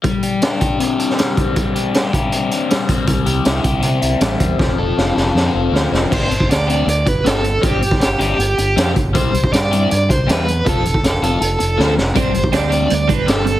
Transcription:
<<
  \new Staff \with { instrumentName = "Overdriven electric guitar" } { \time 4/4 \key c \major \tempo 4 = 159 r1 | r1 | r1 | r1 |
c''4 d''4 d''8 b'8 a'4 | g'4 g'8 g'2 r8 | c''4 d''4 d''8 c''8 b'4 | a'4 a'8 a'2 r8 |
c''4 d''4 d''8 b'8 a'4 | }
  \new Staff \with { instrumentName = "Overdriven electric guitar" } { \time 4/4 \key c \major g8 g'8 d'8 g'8 c'8 d'8 g8 c'8 | g8 g'8 d'8 g'8 c'8 d'8 g8 c'8 | g8 g'8 e'8 g'8 c'8 e'8 g8 c'8 | f8 a'8 f'8 a'8 c'8 f'8 f8 c'8 |
<c' d' g'>8 r4 <c' d' g'>8 r4 <c' d' g'>8 r8 | <c' d' g'>8 r4 <c' d' g'>8 r4 <c' d' g'>8 r8 | <g c' e' g'>8 r4 <g c' e' g'>8 r4 <g c' e' g'>8 r8 | <f c' f' a'>8 r4 <f c' f' a'>8 r4 <f c' f' a'>8 r8 |
<g c' d' g'>8 r4 <g c' d' g'>8 r4 <g c' d' g'>8 r8 | }
  \new Staff \with { instrumentName = "Clean electric guitar" } { \time 4/4 \key c \major r1 | r1 | r1 | r1 |
r1 | r1 | r1 | r1 |
<g c' d'>8 <g c'>8 <g c' d'>8 <g c'>8 <g c'>8 <g c' d'>8 <g c'>8 <g c'>8 | }
  \new Staff \with { instrumentName = "Fingered electric bass" } { \clef bass \time 4/4 \key c \major r1 | r1 | c,8 c,8 c,8 c,8 c8 c,8 a,,8 e,8 | f,,8 f,,8 f,,8 f,,8 f,8 f,,8 d,8 f,,8 |
g,,8 g,,8 d,4 d,8 g,,8 g,,4 | g,,4 g,,8 g,,8 g,,8 g,,8 f,8 g,,8 | c,8 c,8 g,4 g,8 c,8 e,4 | f,,4 f,,8 f,,8 f,,8 f,,8 d,8 f,,8 |
g,,8 g,,8 d,4 d,8 g,,8 g,,4 | }
  \new DrumStaff \with { instrumentName = "Drums" } \drummode { \time 4/4 <hh bd>8 hh8 <hh sn>8 <hh bd>8 hh8 hh16 sn16 <hh sn>8 <hh bd>8 | <hh bd>8 hh8 <hh sn>8 <hh bd>8 hh8 hh8 <hh sn>8 <hh bd>8 | <hh bd>8 hh8 <hh sn>8 <hh bd>8 hh8 hh8 <hh sn>8 <hh bd>8 | <bd sn>4 sn8 sn8 sn4 sn8 sn8 |
<cymc bd>8 hh16 bd16 <hh sn>8 hh8 hh8 <hh bd>8 <hh sn>8 hh8 | <hh bd>8 hh16 <bd sn>16 <hh sn>8 hh8 hh8 hh8 <hh sn>8 <hh bd>8 | <hh bd>8 hh16 bd16 <hh sn>8 hh8 hh8 <hh bd>8 <hh sn>8 hh8 | <hh bd>8 hh16 bd16 <hh sn>8 hh8 hh8 hh8 sn8 sn8 |
<hh bd>8 hh16 bd16 <hh sn>8 hh8 hh8 <hh bd>8 <hh sn>8 hh8 | }
>>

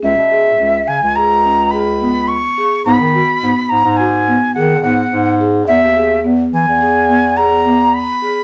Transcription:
<<
  \new Staff \with { instrumentName = "Flute" } { \time 5/4 \key cis \dorian \tempo 4 = 106 e''4. gis''8 ais''4 b''4 cis'''4 | b''4. ais''8 gis''4 fis''8 fis''4 r8 | e''4 r8 gis''4. ais''4 b''4 | }
  \new Staff \with { instrumentName = "Marimba" } { \time 5/4 \key cis \dorian cis'8 gis'8 cis'4 gis'8 cis'8 gis'8 b4 gis'8 | b8 fis'8 b4 fis'8 b8 gis'8 b4 gis'8 | b8 gis'8 b4 gis'8 b8 gis'8 b4 gis'8 | }
  \new Staff \with { instrumentName = "Bass clarinet" } { \clef bass \time 5/4 \key cis \dorian cis,16 b,8. cis,8 cis16 cis,2.~ cis,16 | gis,16 dis8 r16 gis,16 r16 gis,16 gis,4~ gis,16 dis8 gis,8 gis,4 | e,16 dis,8. e,8 e16 e,2.~ e,16 | }
>>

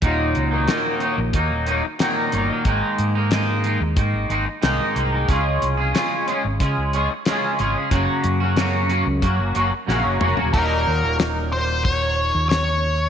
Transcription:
<<
  \new Staff \with { instrumentName = "Lead electric guitar" } { \time 4/4 \key ees \minor \tempo 4 = 91 r1 | r1 | r1 | r1 |
bes'4 r8 c''8 des''4 des''4 | }
  \new Staff \with { instrumentName = "Clean electric guitar" } { \time 4/4 \key ees \minor <ees, bes, ees ges bes ees'>8. <ees ges bes ees'>16 <ees, bes, ees ges bes ees'>8 <ees ges bes ees'>8 <ees ges bes ees'>8 <ees ges bes ees'>8 <ees, bes, ees ges bes ees'>8 <ees ges bes ees'>16 <ees ges bes ees'>16 | <aes, ees aes bes ees'>8. <aes bes ees'>16 <aes, ees aes bes ees'>8 <ees aes bes ees'>8 <ees aes bes ees'>8 <ees aes bes ees'>8 <aes, ees aes bes ees'>8 <ees aes bes ees'>16 <aes bes ees'>16 | <des aes des' f' aes'>8. <des' f' aes'>16 <des aes des' f' aes'>8 <aes des' f' aes'>8 <aes des' f' aes'>8 <aes des' f' aes'>8 <des aes des' f' aes'>8 <aes des' f' aes'>16 <des' f' aes'>16 | <ges, des ges bes des' ges'>8. <ges bes des' ges'>16 <ges, des ges bes des' ges'>8 <ges bes des' ges'>8 <ges bes des' ges'>8 <ges bes des' ges'>8 <ges, des ges bes des' ges'>8 <ges bes des' ges'>16 <ges bes des' ges'>16 |
<ees, bes, ees ges bes ees'>1 | }
  \new Staff \with { instrumentName = "Fingered electric bass" } { \clef bass \time 4/4 \key ees \minor ees,,8 des,8 r8. bes,,16 ees,16 ees,,8 r8. g,,16 r16 | aes,,16 r16 aes,4~ aes,16 ees,16 aes,16 aes,,16 aes,,16 r16 c,16 r16 c,8 | des,8 c,8 r8. aes,,16 des16 des,8 r8. aes,,16 r16 | ges,,16 r16 ges,4~ ges,16 des,16 ges,16 ges,,16 ges,,16 r16 bes,,16 ges,,16 f,,16 ees,,16 |
ees,,8 ees,16 ees,,2 ees,4~ ees,16 | }
  \new DrumStaff \with { instrumentName = "Drums" } \drummode { \time 4/4 <hh bd>8 hh8 <hh sn>8 hh8 <hh bd>8 hh8 <hh sn>8 hh8 | <hh bd>8 hh8 <hh sn>8 hh8 <hh bd>8 hh8 <hh sn>8 hh8 | <hh bd>8 hh8 <hh sn>8 hh8 <hh bd>8 hh8 <hh sn>8 hh8 | <hh bd>8 hh8 <hh sn>8 hh8 <hh bd>8 hh8 sn8 toml16 tomfh16 |
<cymc bd>4 <hho sn>4 <hho bd>4 <hho sn>4 | }
>>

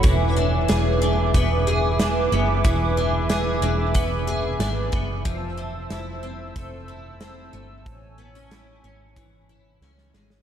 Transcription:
<<
  \new Staff \with { instrumentName = "Analog synth pad" } { \time 4/4 \key e \mixolydian \tempo 4 = 92 << { <gis'' d'''>1~ | <gis'' d'''>1 | <a'' e'''>1~ | <a'' e'''>1 | } \\ { <b' e''>1~ | <b' e''>1 | <c'' e''>1 | <cis'' gis''>1 | } >> }
  \new Staff \with { instrumentName = "Twelve-string acoustic guitar" } { \time 4/4 \key e \mixolydian e8 d'8 gis'8 d'8 b8 gis'8 d'8 b8 | e8 d'8 gis'8 d'8 b8 gis'8 d'8 b8 | f8 c'8 e'8 c'8 a8 e'8 c'8 a8 | r8 b16 cis'16 e'8 cis'8 e8 e'8 cis'8 gis8 | }
  \new Staff \with { instrumentName = "Picked electric bass" } { \clef bass \time 4/4 \key e \mixolydian e,,4 e,,4 e,,4. fis,,8 | e,,4. e,,4. gis,,8 fis,,8 | f,,4 f,,4 f,,4. g,,8 | a,,4. gis,,4. cis,8 gis,,8 | }
  \new DrumStaff \with { instrumentName = "Drums" } \drummode { \time 4/4 <hh bd>4 <hh sn>4 <hh bd>4 <hh sn>4 | <hh bd>4 <hh sn>4 <hh bd>4 <hh sn>8 bd8 | <hh bd>4 <hh sn>4 <hh bd>4 <hh sn>4 | <hh bd>4 <hh sn>4 <hh bd>4 sn16 sn16 sn16 sn16 | }
>>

